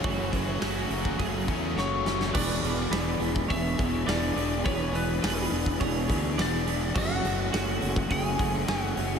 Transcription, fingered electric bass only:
\new Staff \with { instrumentName = "Fingered electric bass" } { \clef bass \time 4/4 \key e \mixolydian \tempo 4 = 104 fis,,4 fis,,8 fis,,8 fis,,8 e,8 fis,,4 | e,,8 e,,8 e,,8 e,,8 e,,8 e,,8 e,,8 e,,8 | e,,4 e,,8 e,,8 e,,8 d,8 e,,4 | fis,,8 fis,,8 fis,,8 fis,,8 fis,,8 fis,,8 fis,,8 fis,,8 | }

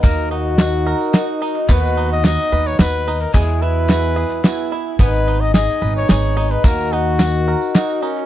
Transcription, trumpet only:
\new Staff \with { instrumentName = "Trumpet" } { \time 3/4 \key dis \phrygian \tempo 4 = 109 ais'8 fis'2 r8 | b'8. dis''16 dis''8. cis''16 b'8. ais'16 | gis'8 b'2 r8 | b'8. dis''16 dis''8. cis''16 cis''8. b'16 |
ais'8 fis'2 r8 | }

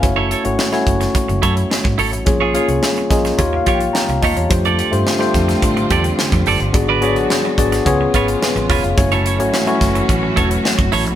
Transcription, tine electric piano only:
\new Staff \with { instrumentName = "Tine electric piano" } { \time 4/4 \key fis \minor \tempo 4 = 107 << { eis''16 r2. r8. | r4. dis''8 \tuplet 3/2 { eis''8 eis''8 g''8 } <g'' ais''>16 eis''16 <dis'' a''>16 cis''16~ | cis''16 r2. r8. | r2. b'8 cis''16 eis''16~ |
eis''16 r2. r8. | } \\ { <a cis' e' fis' cis''>8 r16 <a cis' e' fis' cis''>16 r16 <a cis' e' fis' cis''>4. r4 r16 | <bes des' f' aes' des''>16 r16 <bes des' f' aes' des''>8. r16 <bes des' f' aes' bes'>8 <ais dis' eis' g' cis''>4. r8 | <a d' f' g' c''>8 r16 <a d' f' g' c''>16 r16 <a d' f' g' c''>4. r4 r16 | <b d' fis' gis' d''>16 r16 <b d' fis' gis' cis'' d''>8. r16 <b d' fis' gis' d''>8 <b cis' eis' gis' cis''>4. r8 |
<a cis' e' fis' cis''>8 r16 <a cis' e' fis' cis''>16 r16 <a cis' e' fis' cis''>4. r4 r16 | } >> }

